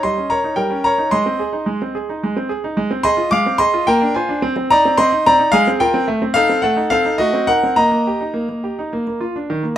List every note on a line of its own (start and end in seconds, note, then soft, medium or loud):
0.03 0.17 G3 medium
0.03 0.30 D#5 medium
0.03 0.31 C6 loud
0.18 0.32 C#4 medium
0.30 0.45 A#4 medium
0.30 0.56 C#5 medium
0.30 0.58 A#5 loud
0.44 0.59 D#4 medium
0.56 0.71 G3 medium
0.56 0.83 A#4 medium
0.56 0.84 G5 medium
0.70 0.86 C#4 medium
0.84 1.00 A#4 medium
0.84 1.11 C#5 medium
0.84 1.10 A#5 loud
0.98 1.13 D#4 medium
1.11 1.26 G#3 medium
1.11 2.46 D#5 medium
1.11 2.45 C6 loud
1.26 1.41 C4 medium
1.40 1.54 G#4 medium
1.53 1.68 D#4 medium
1.66 1.80 G#3 medium
1.82 1.96 C4 medium
1.95 2.09 G#4 medium
2.09 2.23 D#4 medium
2.23 2.36 G#3 medium
2.37 2.51 C4 medium
2.49 2.64 G#4 medium
2.64 2.77 D#4 medium
2.77 2.90 G#3 medium
2.91 3.05 C4 medium
3.03 3.19 G#4 medium
3.03 3.30 D#5 loud
3.03 3.28 C6 loud
3.17 3.32 F4 medium
3.31 3.45 G#3 medium
3.31 3.58 F5 medium
3.31 3.59 D6 loud
3.46 3.60 C4 medium
3.58 3.74 G#4 medium
3.58 3.85 D#5 medium
3.58 3.86 C6 loud
3.74 3.87 F4 medium
3.87 4.01 A#3 medium
3.87 4.13 A#4 medium
3.87 4.12 G5 loud
4.02 4.16 D4 medium
4.14 4.30 F4 medium
4.14 4.41 C5 medium
4.14 4.42 G#5 medium
4.29 4.42 D4 medium
4.42 4.55 C4 medium
4.56 4.71 C4 medium
4.70 4.85 D#4 medium
4.70 4.97 D5 loud
4.70 4.98 A#5 loud
4.85 4.97 C4 medium
4.97 5.11 C4 medium
4.97 5.24 D#5 loud
4.97 5.25 C6 loud
5.12 5.26 D#4 medium
5.26 5.41 C4 medium
5.26 5.52 D5 medium
5.26 5.54 A#5 loud
5.39 5.53 D#4 medium
5.52 5.66 G#3 medium
5.52 5.79 G#4 medium
5.52 5.69 F5 loud
5.67 5.82 C4 medium
5.80 5.95 F4 medium
5.80 6.06 A#4 medium
5.80 6.05 G5 loud
5.94 6.08 C4 medium
6.08 6.21 A3 medium
6.22 6.37 C4 medium
6.34 6.50 D#4 medium
6.34 6.62 A4 medium
6.34 6.60 F5 loud
6.49 6.64 C4 medium
6.62 6.77 A3 medium
6.62 6.90 A4 medium
6.62 6.91 F#5 loud
6.76 6.92 D#4 medium
6.90 7.06 C4 medium
6.90 7.18 A4 medium
6.90 7.16 F5 loud
7.05 7.20 D#4 medium
7.18 7.33 A3 medium
7.18 7.46 F#4 medium
7.18 7.48 D#5 loud
7.33 7.49 C4 medium
7.47 7.63 D#4 medium
7.47 7.75 A#4 medium
7.47 7.77 F#5 loud
7.63 7.78 C4 medium
7.76 7.90 A#3 medium
7.76 9.17 D#5 medium
7.76 9.20 A#5 loud
7.92 8.07 A#3 medium
8.07 8.22 G4 medium
8.21 8.36 D#4 medium
8.34 8.47 A#3 medium
8.49 8.64 A#3 medium
8.64 8.79 G4 medium
8.79 8.93 D#4 medium
8.93 9.06 A#3 medium
9.07 9.22 A#3 medium
9.21 9.36 F4 medium
9.36 9.50 D4 medium
9.50 9.63 D#3 medium
9.63 9.78 A#3 medium